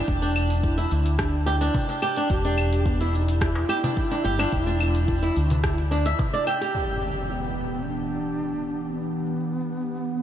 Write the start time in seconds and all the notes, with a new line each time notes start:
0.08 E1 D4, kick, shaker
0.22 D4, open hi-hat
0.36 claves, shaker
0.50 open hi-hat, shaker
0.63 E4, kick, shaker
0.78 E4, open hi-hat
0.91 D2, shaker
1.06 open hi-hat, shaker
1.19 D4, kick, cross-stick, shaker
1.46 G4, darbuka tek, shaker
1.61 D4, open hi-hat, darbuka ka, shaker
1.74 kick, darbuka dum, shaker
1.89 D4, open hi-hat, darbuka tek
2.02 G4, claves, shaker
2.17 D4, open hi-hat, shaker
2.30 E1 G4, kick, shaker
2.45 D4, open hi-hat
2.58 claves, shaker
2.73 open hi-hat, shaker
2.86 B3, kick, shaker
3.01 E4, open hi-hat
3.14 D#4, shaker
3.29 E4, open hi-hat, shaker
3.41 kick, cross-stick, shaker
3.55 darbuka tek
3.69 G4, claves, shaker
3.84 D4, open hi-hat, darbuka dum, shaker
3.97 kick, shaker
4.11 D4, open hi-hat, darbuka tek
4.24 G1 G4, shaker
4.39 D4, open hi-hat, darbuka ka, claves, shaker
4.52 E1, kick, shaker
4.67 D4, open hi-hat
4.80 claves, shaker
4.95 open hi-hat, shaker
5.08 kick, shaker
5.23 E4, open hi-hat
5.36 D2, shaker
5.50 open hi-hat, darbuka dum, shaker
5.64 kick, cross-stick, shaker
5.78 open hi-hat
5.91 D4, darbuka tek, shaker
6.06 E5, open hi-hat, darbuka ka, shaker
6.19 kick, darbuka dum, shaker
6.33 D5, open hi-hat, darbuka tek
6.47 G5, claves, shaker
6.61 G4, open hi-hat, shaker
6.75 E3 B3 G4 F#5, impact, shaker
7.03 shaker
7.18 shaker
7.30 B3 C4, shaker
7.58 shaker
7.73 shaker
7.86 D4, shaker
8.14 shaker
8.29 shaker
8.42 shaker
8.69 shaker
8.84 shaker
8.97 B3, shaker
9.25 shaker
9.40 shaker
9.53 shaker
9.81 shaker
9.96 shaker
10.09 shaker